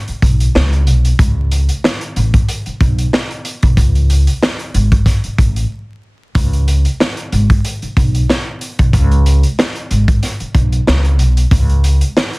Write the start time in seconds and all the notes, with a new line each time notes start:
0.08 muted upright bass stroke, closed hi-hat
0.22 B1, kick, closed hi-hat
0.40 closed hi-hat
0.55 C#2, snare
0.73 closed hi-hat
0.87 B1, closed hi-hat
1.05 closed hi-hat
1.19 C#2, kick, closed hi-hat
1.52 closed hi-hat
1.69 closed hi-hat
1.84 snare
2.01 closed hi-hat
2.16 A1, closed hi-hat
2.34 kick, closed hi-hat
2.48 closed hi-hat
2.66 muted upright bass stroke, closed hi-hat
2.81 B1, kick, closed hi-hat
2.98 closed hi-hat
3.13 snare
3.31 closed hi-hat
3.45 closed hi-hat
3.63 B1, kick, closed hi-hat
3.77 C#2, kick, closed hi-hat
3.95 closed hi-hat
4.10 closed hi-hat
4.27 closed hi-hat
4.42 snare
4.59 closed hi-hat
4.74 G#1, closed hi-hat
4.92 kick, closed hi-hat
5.06 kick, snare, closed hi-hat
5.24 muted upright bass stroke, closed hi-hat
5.38 A1, kick, closed hi-hat
5.56 closed hi-hat
6.35 C#2, kick, closed hi-hat
6.53 closed hi-hat
6.68 closed hi-hat
6.85 closed hi-hat
7.00 snare
7.17 closed hi-hat
7.32 G#1, closed hi-hat
7.50 kick, closed hi-hat
7.65 closed hi-hat
7.82 muted upright bass stroke, closed hi-hat
7.97 B1, kick, closed hi-hat
8.15 closed hi-hat
8.29 snare
8.61 closed hi-hat
8.79 B1, kick, closed hi-hat
8.93 C#2, kick, closed hi-hat
9.11 closed hi-hat
9.26 closed hi-hat
9.43 closed hi-hat
9.59 snare
9.75 closed hi-hat
9.91 G#1, closed hi-hat
10.08 kick, closed hi-hat
10.23 snare, closed hi-hat
10.40 muted upright bass stroke, closed hi-hat
10.55 B1, kick, closed hi-hat
10.72 closed hi-hat
10.87 C#2, snare
11.05 closed hi-hat
11.19 B1, closed hi-hat
11.37 closed hi-hat
11.51 C#2, kick, closed hi-hat
11.69 closed hi-hat
11.84 closed hi-hat
12.01 closed hi-hat
12.17 snare
12.33 closed hi-hat